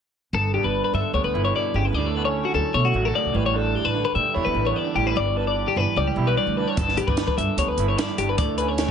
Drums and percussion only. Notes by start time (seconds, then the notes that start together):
6.77 kick, closed hi-hat
6.89 snare
6.97 closed hi-hat
7.08 kick
7.17 snare, closed hi-hat
7.28 kick
7.38 closed hi-hat
7.58 closed hi-hat
7.78 closed hi-hat
7.98 snare, closed hi-hat
8.18 closed hi-hat
8.38 kick, closed hi-hat
8.58 closed hi-hat
8.78 snare, closed hi-hat